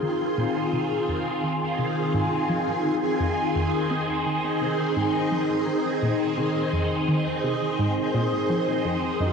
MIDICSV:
0, 0, Header, 1, 5, 480
1, 0, Start_track
1, 0, Key_signature, -4, "minor"
1, 0, Tempo, 705882
1, 497, Time_signature, 4, 2, 24, 8
1, 6343, End_track
2, 0, Start_track
2, 0, Title_t, "Synth texture"
2, 0, Program_c, 0, 99
2, 0, Note_on_c, 0, 84, 80
2, 6343, Note_off_c, 0, 84, 0
2, 6343, End_track
3, 0, Start_track
3, 0, Title_t, "Soft synth lead"
3, 0, Program_c, 1, 80
3, 6259, Note_on_c, 1, 75, 103
3, 6343, Note_off_c, 1, 75, 0
3, 6343, End_track
4, 0, Start_track
4, 0, Title_t, "String machine"
4, 0, Program_c, 2, 50
4, 0, Note_on_c, 2, 51, 72
4, 0, Note_on_c, 2, 60, 63
4, 0, Note_on_c, 2, 65, 65
4, 0, Note_on_c, 2, 68, 80
4, 2390, Note_off_c, 2, 65, 0
4, 2418, Note_on_c, 2, 63, 66
4, 6230, Note_off_c, 2, 63, 0
4, 6231, Note_off_c, 2, 51, 0
4, 6231, Note_off_c, 2, 60, 0
4, 6231, Note_off_c, 2, 68, 0
4, 6257, Note_on_c, 2, 61, 67
4, 6257, Note_on_c, 2, 65, 66
4, 6258, Note_on_c, 2, 54, 74
4, 6258, Note_on_c, 2, 70, 82
4, 6343, Note_off_c, 2, 54, 0
4, 6343, Note_off_c, 2, 61, 0
4, 6343, Note_off_c, 2, 65, 0
4, 6343, Note_off_c, 2, 70, 0
4, 6343, End_track
5, 0, Start_track
5, 0, Title_t, "Synth arpeggio sound"
5, 0, Program_c, 3, 84
5, 16, Note_on_c, 3, 51, 73
5, 97, Note_off_c, 3, 51, 0
5, 257, Note_on_c, 3, 46, 96
5, 392, Note_off_c, 3, 46, 0
5, 497, Note_on_c, 3, 48, 81
5, 632, Note_off_c, 3, 48, 0
5, 737, Note_on_c, 3, 41, 67
5, 872, Note_off_c, 3, 41, 0
5, 978, Note_on_c, 3, 51, 73
5, 1112, Note_off_c, 3, 51, 0
5, 1216, Note_on_c, 3, 48, 72
5, 1351, Note_off_c, 3, 48, 0
5, 1456, Note_on_c, 3, 44, 95
5, 1659, Note_off_c, 3, 44, 0
5, 1697, Note_on_c, 3, 53, 73
5, 1831, Note_off_c, 3, 53, 0
5, 1936, Note_on_c, 3, 51, 75
5, 2017, Note_off_c, 3, 51, 0
5, 2177, Note_on_c, 3, 41, 70
5, 2258, Note_off_c, 3, 41, 0
5, 2417, Note_on_c, 3, 41, 82
5, 2551, Note_off_c, 3, 41, 0
5, 2656, Note_on_c, 3, 60, 71
5, 2791, Note_off_c, 3, 60, 0
5, 2896, Note_on_c, 3, 51, 69
5, 3031, Note_off_c, 3, 51, 0
5, 3137, Note_on_c, 3, 48, 74
5, 3271, Note_off_c, 3, 48, 0
5, 3377, Note_on_c, 3, 44, 96
5, 3579, Note_off_c, 3, 44, 0
5, 3618, Note_on_c, 3, 53, 72
5, 3752, Note_off_c, 3, 53, 0
5, 3857, Note_on_c, 3, 51, 73
5, 3938, Note_off_c, 3, 51, 0
5, 4096, Note_on_c, 3, 46, 94
5, 4231, Note_off_c, 3, 46, 0
5, 4337, Note_on_c, 3, 48, 81
5, 4472, Note_off_c, 3, 48, 0
5, 4577, Note_on_c, 3, 41, 71
5, 4712, Note_off_c, 3, 41, 0
5, 4817, Note_on_c, 3, 51, 72
5, 4951, Note_off_c, 3, 51, 0
5, 5058, Note_on_c, 3, 48, 74
5, 5192, Note_off_c, 3, 48, 0
5, 5297, Note_on_c, 3, 44, 91
5, 5499, Note_off_c, 3, 44, 0
5, 5537, Note_on_c, 3, 46, 97
5, 5671, Note_off_c, 3, 46, 0
5, 5778, Note_on_c, 3, 53, 72
5, 5912, Note_off_c, 3, 53, 0
5, 6018, Note_on_c, 3, 41, 96
5, 6152, Note_off_c, 3, 41, 0
5, 6258, Note_on_c, 3, 42, 78
5, 6343, Note_off_c, 3, 42, 0
5, 6343, End_track
0, 0, End_of_file